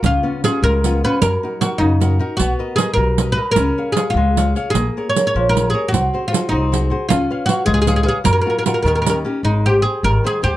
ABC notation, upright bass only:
X:1
M:6/8
L:1/8
Q:3/8=102
K:C#mix
V:1 name="Upright bass" clef=bass
C,, z2 C,,3 | F,, z2 F,,3 | B,,, z2 B,,,3 | C,, z2 C,,3 |
A,,, z2 A,,,3 | ^B,,, z2 B,,,3 | C,, z2 C,,3 | F,, z2 D,,3 |
[K:Ab] A,,,3 A,,, z E,, |]